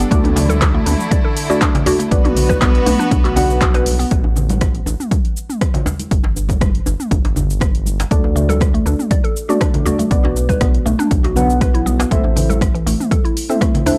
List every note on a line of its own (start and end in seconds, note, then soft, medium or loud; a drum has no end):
0.00 closed hi-hat soft
0.00 cabasa soft
0.11 0.80 D2 loud
0.11 2.09 D3 medium
0.11 1.46 A3 loud
0.11 2.10 A3 medium
0.11 0.23 D4 medium
0.11 1.46 D4 medium
0.11 2.09 E4 loud
0.11 1.46 F#4 medium
0.11 1.46 A4 medium
0.11 1.46 D5 loud
0.11 kick loud
0.11 closed hi-hat medium
0.11 cabasa soft
0.24 closed hi-hat soft
0.24 mid tom medium
0.24 djembe tone medium
0.36 0.48 A3 medium
0.36 open hi-hat loud
0.36 djembe slap medium
0.36 djembe tone medium
0.36 low conga medium
0.36 cabasa medium
0.49 0.61 A4 loud
0.49 closed hi-hat soft
0.49 high conga loud
0.49 cabasa soft
0.61 kick loud
0.61 cross-stick loud
0.61 clap loud
0.61 closed hi-hat medium
0.61 high conga loud
0.61 cabasa soft
0.74 0.85 A3 medium
0.86 0.95 D2 loud
0.86 0.93 D4 medium
0.86 open hi-hat loud
0.86 mid tom medium
0.86 djembe tone medium
0.86 cabasa medium
1.00 cabasa medium
1.11 1.23 D5 medium
1.11 kick loud
1.11 closed hi-hat medium
1.11 high conga medium
1.11 cabasa soft
1.24 1.35 A4 medium
1.37 open hi-hat medium
1.37 cabasa medium
1.49 1.83 A3 medium
1.49 1.83 D4 medium
1.49 1.83 F#4 medium
1.49 1.56 F#4 medium
1.49 1.83 A4 medium
1.49 1.83 D5 medium
1.49 djembe slap medium
1.49 cabasa medium
1.61 1.74 D4 loud
1.61 kick loud
1.61 cross-stick loud
1.61 clap loud
1.61 closed hi-hat medium
1.61 cabasa soft
1.75 closed hi-hat soft
1.75 djembe slap medium
1.75 djembe tone medium
1.75 low conga loud
1.86 1.95 A3 medium
1.86 1.95 D4 medium
1.86 1.95 F#4 medium
1.86 1.98 F#4 loud
1.86 1.95 A4 medium
1.86 1.95 D5 medium
1.86 open hi-hat loud
1.86 djembe slap loud
1.86 high conga medium
1.86 djembe bass loud
1.86 cabasa medium
1.99 2.10 A3 medium
1.99 closed hi-hat soft
1.99 cabasa soft
2.11 2.80 B1 loud
2.11 4.09 B3 medium
2.11 3.34 B3 medium
2.11 3.34 D4 medium
2.11 3.34 F#4 medium
2.11 4.09 F#4 medium
2.11 4.09 B4 loud
2.11 3.34 B4 medium
2.11 3.34 D5 loud
2.11 kick loud
2.11 closed hi-hat medium
2.11 cabasa soft
2.25 2.35 F#4 medium
2.25 closed hi-hat soft
2.25 mid tom medium
2.25 djembe tone medium
2.36 open hi-hat loud
2.36 djembe tone medium
2.36 low conga medium
2.36 cabasa medium
2.49 2.60 B4 loud
2.49 kick medium
2.49 cross-stick medium
2.49 closed hi-hat soft
2.49 high conga loud
2.49 cabasa medium
2.61 2.74 B3 loud
2.61 kick loud
2.61 cross-stick loud
2.61 clap loud
2.61 closed hi-hat medium
2.61 high conga loud
2.61 cabasa soft
2.75 closed hi-hat soft
2.86 2.95 B1 loud
2.86 2.98 A3 medium
2.86 open hi-hat loud
2.86 mid tom medium
2.86 djembe tone medium
2.86 cabasa loud
2.99 3.10 D4 loud
2.99 cabasa medium
3.11 4.05 B1 loud
3.11 kick loud
3.11 closed hi-hat medium
3.11 djembe tone medium
3.11 djembe bass loud
3.11 cabasa soft
3.24 3.35 F#4 medium
3.24 clap soft
3.24 closed hi-hat soft
3.36 3.43 B3 medium
3.36 4.08 B3 loud
3.36 4.09 D4 medium
3.36 4.08 F#4 medium
3.36 4.08 B4 medium
3.36 4.09 F#5 loud
3.36 open hi-hat loud
3.36 low conga medium
3.36 djembe bass medium
3.36 cabasa medium
3.50 cabasa medium
3.61 3.74 F#4 medium
3.61 kick loud
3.61 cross-stick loud
3.61 clap loud
3.61 closed hi-hat medium
3.61 high conga medium
3.61 cabasa soft
3.74 3.85 B4 loud
3.74 closed hi-hat soft
3.74 djembe slap medium
3.86 open hi-hat loud
3.86 high conga medium
3.86 cabasa medium
3.99 4.10 B3 medium
3.99 open hi-hat medium
3.99 cabasa medium
4.11 4.80 A1 loud
4.11 kick loud
4.11 closed hi-hat medium
4.11 cabasa soft
4.24 djembe tone medium
4.36 djembe tone medium
4.36 low conga medium
4.36 cabasa medium
4.49 closed hi-hat soft
4.49 high conga loud
4.49 cabasa soft
4.61 kick loud
4.61 cross-stick loud
4.61 closed hi-hat medium
4.61 high conga loud
4.61 cabasa soft
4.75 closed hi-hat soft
4.86 4.95 A1 loud
4.86 djembe tone medium
4.86 cabasa medium
5.00 mid tom medium
5.00 cabasa medium
5.11 kick loud
5.11 closed hi-hat medium
5.11 high conga medium
5.11 cabasa soft
5.25 closed hi-hat soft
5.37 cabasa medium
5.50 mid tom medium
5.50 cabasa medium
5.61 kick loud
5.61 cross-stick loud
5.61 closed hi-hat medium
5.61 cabasa soft
5.74 closed hi-hat soft
5.74 djembe tone medium
5.74 low conga loud
5.86 djembe slap medium
5.86 high conga medium
5.86 djembe bass medium
5.86 cabasa medium
5.99 closed hi-hat soft
5.99 high conga medium
5.99 cabasa soft
6.11 6.80 G1 medium
6.11 kick loud
6.11 closed hi-hat medium
6.11 cabasa soft
6.23 djembe slap medium
6.23 djembe tone medium
6.36 djembe tone medium
6.36 cabasa medium
6.49 kick medium
6.49 closed hi-hat soft
6.49 high conga loud
6.49 cabasa medium
6.61 kick loud
6.61 cross-stick loud
6.61 closed hi-hat medium
6.61 high conga loud
6.61 cabasa soft
6.75 closed hi-hat soft
6.86 6.95 G1 loud
6.86 djembe tone medium
6.86 cabasa loud
7.00 mid tom medium
7.00 cabasa medium
7.11 8.05 G1 loud
7.11 kick loud
7.11 closed hi-hat medium
7.11 djembe bass loud
7.11 cabasa soft
7.25 closed hi-hat soft
7.25 djembe slap medium
7.36 low conga medium
7.36 djembe bass medium
7.36 cabasa medium
7.50 cabasa medium
7.60 kick loud
7.60 cross-stick loud
7.60 closed hi-hat medium
7.60 high conga medium
7.60 cabasa soft
7.75 closed hi-hat soft
7.86 high conga medium
7.86 cabasa loud
8.00 closed hi-hat soft
8.00 djembe slap loud
8.00 cabasa medium
8.11 8.80 D2 loud
8.11 9.46 A3 medium
8.11 8.23 D4 medium
8.11 9.46 D4 medium
8.11 9.46 F#4 medium
8.11 9.46 A4 medium
8.11 9.46 D5 loud
8.11 kick loud
8.11 closed hi-hat medium
8.11 cabasa soft
8.24 djembe tone medium
8.36 8.48 A3 medium
8.36 djembe tone medium
8.36 low conga medium
8.36 cabasa loud
8.49 8.60 A4 loud
8.49 closed hi-hat soft
8.49 high conga loud
8.49 cabasa medium
8.60 kick loud
8.60 cross-stick loud
8.60 closed hi-hat medium
8.60 high conga loud
8.60 cabasa soft
8.74 8.85 A3 medium
8.74 closed hi-hat soft
8.86 8.95 D2 loud
8.86 8.93 D4 medium
8.86 djembe tone medium
8.86 cabasa loud
8.99 mid tom medium
8.99 cabasa medium
9.11 9.23 D5 medium
9.11 kick loud
9.11 closed hi-hat medium
9.11 high conga medium
9.11 cabasa soft
9.24 9.35 A4 medium
9.24 closed hi-hat soft
9.37 cabasa medium
9.49 9.83 A3 medium
9.49 9.83 D4 medium
9.49 9.56 F#4 medium
9.49 9.83 F#4 medium
9.49 9.83 A4 medium
9.49 9.83 D5 medium
9.49 mid tom medium
9.49 cabasa medium
9.61 9.74 D4 loud
9.61 kick loud
9.61 cross-stick loud
9.61 closed hi-hat medium
9.61 cabasa soft
9.74 closed hi-hat soft
9.74 djembe tone medium
9.74 low conga loud
9.85 9.95 A3 medium
9.85 9.95 D4 medium
9.85 9.98 F#4 loud
9.85 9.95 F#4 medium
9.85 9.95 A4 medium
9.85 9.95 D5 medium
9.85 djembe slap medium
9.85 high conga medium
9.85 djembe bass medium
9.85 cabasa loud
9.99 10.10 A3 medium
9.99 closed hi-hat soft
9.99 high conga medium
9.99 cabasa medium
10.11 10.79 B1 medium
10.11 11.34 B3 medium
10.11 11.34 D4 medium
10.11 11.34 F#4 medium
10.11 11.34 B4 medium
10.11 11.34 D5 loud
10.11 kick loud
10.11 closed hi-hat medium
10.11 cabasa soft
10.24 10.35 F#4 medium
10.24 djembe slap medium
10.24 djembe tone medium
10.36 djembe tone medium
10.36 cabasa loud
10.49 10.60 B4 loud
10.49 kick medium
10.49 closed hi-hat soft
10.49 high conga loud
10.49 cabasa medium
10.61 10.74 B3 loud
10.61 kick loud
10.61 cross-stick loud
10.61 closed hi-hat medium
10.61 high conga loud
10.61 cabasa soft
10.74 closed hi-hat soft
10.86 10.95 B1 loud
10.86 10.98 A3 medium
10.86 djembe tone medium
10.86 cabasa loud
10.99 11.10 D4 loud
10.99 mid tom medium
10.99 cabasa medium
11.11 12.04 B1 loud
11.11 kick loud
11.11 closed hi-hat medium
11.11 djembe bass medium
11.11 cabasa soft
11.24 11.35 F#4 medium
11.24 closed hi-hat soft
11.24 djembe slap medium
11.36 11.49 F#3 medium
11.36 12.09 B3 medium
11.36 12.09 D4 medium
11.36 12.09 F#4 medium
11.36 12.09 B4 medium
11.36 12.09 F#5 loud
11.36 djembe bass medium
11.36 low conga medium
11.36 cabasa medium
11.50 cabasa medium
11.61 11.73 B4 medium
11.61 kick loud
11.61 cross-stick loud
11.61 closed hi-hat medium
11.61 high conga medium
11.61 cabasa soft
11.74 11.81 E4 loud
11.74 closed hi-hat soft
11.86 11.98 B3 loud
11.86 high conga medium
11.86 cabasa loud
11.99 12.10 B3 medium
11.99 closed hi-hat soft
11.99 djembe slap loud
11.99 cabasa medium
12.11 12.80 A1 loud
12.11 12.23 A3 medium
12.11 13.46 C4 loud
12.11 13.46 E4 medium
12.11 13.46 A4 medium
12.11 13.46 C5 medium
12.11 13.46 E5 loud
12.11 kick loud
12.11 closed hi-hat medium
12.11 cabasa soft
12.24 djembe tone medium
12.36 12.48 E3 medium
12.36 open hi-hat medium
12.36 djembe tone medium
12.36 low conga medium
12.36 cabasa medium
12.50 12.60 A4 medium
12.50 closed hi-hat soft
12.50 high conga loud
12.50 cabasa soft
12.61 kick loud
12.61 cross-stick loud
12.61 closed hi-hat medium
12.61 high conga loud
12.61 cabasa soft
12.74 12.85 E3 medium
12.74 closed hi-hat soft
12.86 12.95 A1 loud
12.86 12.94 A3 medium
12.86 open hi-hat medium
12.86 djembe tone medium
12.86 cabasa medium
13.00 mid tom medium
13.00 cabasa medium
13.11 13.23 A4 medium
13.11 kick loud
13.11 closed hi-hat medium
13.11 high conga medium
13.11 cabasa soft
13.25 13.35 E4 medium
13.25 closed hi-hat soft
13.37 open hi-hat medium
13.37 cabasa medium
13.49 13.56 C4 medium
13.49 13.83 C4 medium
13.49 13.83 E4 medium
13.49 13.83 A4 medium
13.49 13.84 C5 medium
13.49 13.84 E5 medium
13.49 mid tom medium
13.49 cabasa medium
13.61 13.74 A3 loud
13.61 kick loud
13.61 cross-stick loud
13.61 closed hi-hat medium
13.61 cabasa soft
13.75 closed hi-hat soft
13.75 djembe tone medium
13.75 low conga loud
13.86 13.95 C4 medium
13.86 13.98 D4 loud
13.86 13.95 E4 medium
13.86 13.95 A4 medium
13.86 13.95 C5 medium
13.86 13.95 E5 medium
13.86 open hi-hat medium
13.86 djembe slap medium
13.86 high conga medium
13.86 djembe bass medium
13.86 cabasa loud